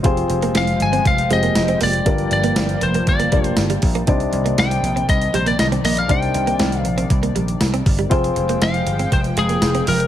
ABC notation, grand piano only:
X:1
M:4/4
L:1/8
Q:1/4=119
K:Cm
V:1 name="Grand piano"
[CFGAc]4- [CFGAc] [CFGAc]3 | [DFGBd]4- [DFGBd] [DFGBd]3 | [DEGcd]8 | [DEGcd]8 |
[CFAcg]8 |]
V:2 name="Grand piano" clef=bass
z8 | G,,3 z4 z | C,3 z4 z | C,3 z4 z |
z8 |]